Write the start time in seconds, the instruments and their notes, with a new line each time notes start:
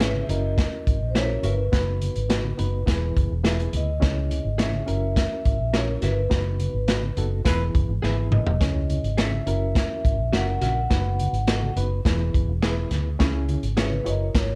Already playing: fingered electric bass G#1, reed electric piano C#3
0.00 reed electric piano C#4 E4 G#4 C#5, clean electric guitar G#4 C#5 E5, vibraphone B4, snare, closed hi-hat, muted conga
0.14 muted conga, high conga
0.23 vibraphone E5
0.29 fingered electric bass F#1, reed electric piano C#4 E4 F#4 A#4, vibraphone D#5, closed hi-hat, low conga
0.58 kick, snare, closed hi-hat, low conga
0.72 muted conga
0.87 fingered electric bass G#1, kick, closed hi-hat
1.01 fingered electric bass A#1
1.10 vibraphone C5
1.14 reed electric piano C#4 E4 F#4 G#4, clean electric guitar F#4 A#4 E5, vibraphone C#5, snare, closed hi-hat
1.22 reed electric piano A#4
1.29 muted conga
1.43 fingered electric bass G1, clean electric guitar F#4 A#4 E5, vibraphone B4, closed hi-hat, high conga, low conga
1.72 fingered electric bass F#1, reed electric piano B3 D#4 F#4 B4, kick, snare, closed hi-hat
2.01 closed hi-hat, high conga
2.16 fingered electric bass G#1, closed hi-hat
2.29 reed electric piano B3 D#4 F#4 B4, clean electric guitar F#4 B4 D#5, snare, closed hi-hat
2.44 muted conga, high conga
2.58 fingered electric bass F#1, reed electric piano B3 D#4 F#4 B4, closed hi-hat, low conga
2.86 fingered electric bass E1, reed electric piano E3 B3 E4 G#4 B4, kick, snare, closed hi-hat, low conga
3.02 muted conga
3.16 fingered electric bass F#1, kick, closed hi-hat
3.31 fingered electric bass E1
3.43 reed electric piano B3 E4 G#4 B4, clean electric guitar G#4 B4 E5, snare, closed hi-hat, muted conga
3.59 closed hi-hat, muted conga
3.73 fingered electric bass D2, vibraphone D#5, closed hi-hat, high conga, low conga
4.00 fingered electric bass C#2, reed electric piano C#3 C#4 E4 G#4 C#5, kick, snare, closed hi-hat
4.17 muted conga
4.31 closed hi-hat, high conga
4.45 fingered electric bass G#1
4.58 reed electric piano C#4 E4 G#4 C#5, clean electric guitar G#4 C#5 E5, vibraphone E5, snare, closed hi-hat, muted conga
4.73 muted conga, high conga
4.86 fingered electric bass F#1, reed electric piano C#4 E4 F#4 A#4, closed hi-hat, low conga
5.16 vibraphone E5, kick, snare, closed hi-hat, low conga
5.45 fingered electric bass G#1, kick, closed hi-hat
5.60 fingered electric bass A#1
5.73 reed electric piano C#4 E4 F#4 A#4, clean electric guitar F#4 A#4 E5, vibraphone C#5, snare, closed hi-hat
5.88 muted conga
6.02 fingered electric bass G1, clean electric guitar F#4 A#4 E5, vibraphone B4, snare, closed hi-hat, high conga, low conga
6.29 fingered electric bass F#1, reed electric piano B3 D#4 F#4 B4, kick, snare, closed hi-hat
6.45 muted conga
6.60 closed hi-hat, high conga
6.74 fingered electric bass G#1
6.88 reed electric piano B3 D#4 F#4 B4, clean electric guitar F#4 B4 D#5, snare, closed hi-hat, muted conga
7.02 high conga
7.17 fingered electric bass F#1, reed electric piano B3 D#4 F#4 A4, closed hi-hat, low conga
7.45 fingered electric bass E1, reed electric piano E3 B3 E4 G#4 B4, saxophone section G#3 E4 B4, kick, snare, closed hi-hat, low conga
7.75 fingered electric bass F#1, kick, closed hi-hat
7.89 fingered electric bass G#1
8.02 fingered electric bass G#1, reed electric piano B3 E4 G#4 B4, clean electric guitar G#4 B4 E5, snare, muted conga, high conga
8.17 muted conga
8.31 vibraphone D#5, mid tom, high conga, low conga
8.47 fingered electric bass E1, floor tom
8.60 fingered electric bass C#2, reed electric piano C#3 C#4 E4 G#4 C#5, kick, snare, closed hi-hat
8.90 closed hi-hat, high conga
9.04 fingered electric bass G#1, closed hi-hat
9.17 reed electric piano C#4 E4 G#4 E5, clean electric guitar G#4 C#5 E5, vibraphone E5, snare, closed hi-hat, muted conga
9.32 high conga
9.46 fingered electric bass F#1, reed electric piano C#4 E4 F#4 A#4, closed hi-hat, low conga
9.75 vibraphone E5, kick, snare, closed hi-hat, muted conga, low conga
9.90 muted conga
10.04 fingered electric bass G#1, kick, closed hi-hat
10.18 fingered electric bass A#1
10.32 fingered electric bass F#1, reed electric piano C#4 E4 F#4 A#4, clean electric guitar F#4 A#4 E5, vibraphone F#5, snare, closed hi-hat
10.47 muted conga
10.61 fingered electric bass A#1, clean electric guitar F#4 A#4 E5, vibraphone F#5, snare, closed hi-hat, high conga, low conga
10.90 fingered electric bass F#1, reed electric piano B3 D#4 F#4 B4, kick, snare, closed hi-hat
11.05 muted conga
11.19 closed hi-hat, high conga
11.33 fingered electric bass G#1, closed hi-hat
11.47 reed electric piano B3 D#4 F#4 A4, clean electric guitar F#4 B4 D#5, snare, closed hi-hat
11.62 muted conga, high conga
11.76 fingered electric bass F#1, reed electric piano B3 D#4 F#4 B4, closed hi-hat, low conga
12.05 fingered electric bass E1, reed electric piano E3 B3 E4 G#4 B4, kick, snare, closed hi-hat, low conga
12.34 fingered electric bass F#1, kick, closed hi-hat
12.48 fingered electric bass E1
12.62 reed electric piano B3 E4 G#4 B4, clean electric guitar G#4 B4 E5, snare, closed hi-hat
12.91 fingered electric bass D2, snare, closed hi-hat, high conga, low conga
13.19 fingered electric bass C#2, reed electric piano C#3 C#4 E4 G#4 C#5, kick, snare, closed hi-hat
13.49 closed hi-hat, high conga
13.63 fingered electric bass G#1, closed hi-hat
13.76 reed electric piano C#4 E4 G#4 C#5, clean electric guitar G#4 C#5 E5, vibraphone B4, snare, closed hi-hat, muted conga
13.91 muted conga, high conga
14.05 fingered electric bass F#1, reed electric piano E4 F#4 G#4 C#5, closed hi-hat, low conga
14.09 reed electric piano A#4, vibraphone D#5
14.34 fingered electric bass G#1, vibraphone C#5, kick, snare, closed hi-hat, muted conga, low conga
14.50 muted conga